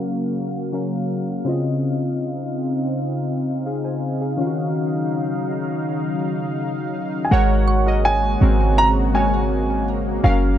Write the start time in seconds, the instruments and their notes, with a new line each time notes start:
Already playing: analog synth pad C#3 A#3 F#4 F5, synth keys F#3 C#4 A#4 F5
0.72 synth keys F#3 C#4 A#4 F5
1.45 synth keys C#3 C4 F4, analog synth pad C4 D#4
1.49 synth keys D#5
3.66 synth keys G#4 F5
3.84 synth keys C5 G#5
4.21 synth keys G#4 F5
4.37 analog synth pad C#3 F#3, synth keys D#3 C#4 F4
4.41 synth keys F5
4.46 synth keys F#4
7.25 grand piano G#5
7.31 808-style bass G#1, analog synth pad C#3 G#3 A#3 F#4, synth keys G#3 F#4 A#4 C#5, grand piano F#5
7.68 synth pluck C#6
7.86 synth keys G#3 F#4 A#4 D#5
8.05 grand piano G#5
8.40 808-style bass G#1, synth keys G#3 C4 F#4 A#4
8.78 grand piano A#5
9.14 synth keys G#3 F#4 A#4 C#5, grand piano G#5
10.23 808-style bass F#1, analog synth pad C#3 F#3 F4, synth keys F#3 C#4 A#4 F5, grand piano F5